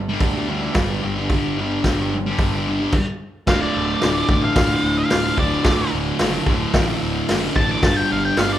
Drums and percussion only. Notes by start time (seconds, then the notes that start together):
0.20 kick, open hi-hat
0.74 kick, snare, open hi-hat
1.30 kick, open hi-hat
1.84 kick, snare, open hi-hat
2.39 kick, open hi-hat
2.92 kick, crash
3.47 kick, snare, crash
4.01 snare, open hi-hat
4.29 kick
4.56 kick, snare, open hi-hat
5.10 snare, open hi-hat
5.38 kick
5.64 kick, snare, open hi-hat
6.19 snare, open hi-hat
6.47 kick
6.74 kick, snare, open hi-hat
7.29 snare, open hi-hat
7.56 kick
7.83 kick, snare, open hi-hat
8.37 snare, open hi-hat